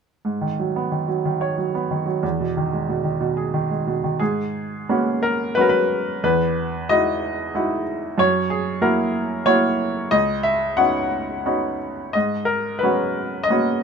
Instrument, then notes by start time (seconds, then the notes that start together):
grand piano
0.25 G#2
0.41 D#3
0.59 F#3
0.76 B3
0.92 D#3
1.08 F#3
1.25 D#3
1.41 C#5
1.58 F#3
1.75 B3
1.91 D#3
2.06 F#3
2.23 E2
2.40 B2
2.57 D#3
2.73 G#3
2.89 B2
3.04 D#3
3.21 B2
3.37 G#4
3.54 D#3
3.70 G#3
3.87 B2
4.04 D#3
4.20 G#2 G#4
4.89 G#3 A#3 B3 C#4 F#4
5.23 A#4
5.55 F#3 G#3 B3 C#4 F#4 B4
5.61 A#4
5.69 B4
6.23 E2 B4
6.89 G#3 D#4 E4 F#4 D#5
7.55 G#3 D#4 E4 F#4
8.18 F#2 C#5
8.50 G#4
8.81 A#3 E4 F#4 A#4
9.46 A#3 E4 F#4 C#5
10.11 C#2 D#5
10.43 E5
10.77 B3 C#4 D#4 F#4 F#5
11.46 B3 C#4 D#4 F#4
12.13 G#2 D#5
12.45 A#4
12.79 B4
12.83 F#3 G#3 B3 C#4 F#4
13.43 D#5
13.50 G#3 A#3 B3 C#4 F#4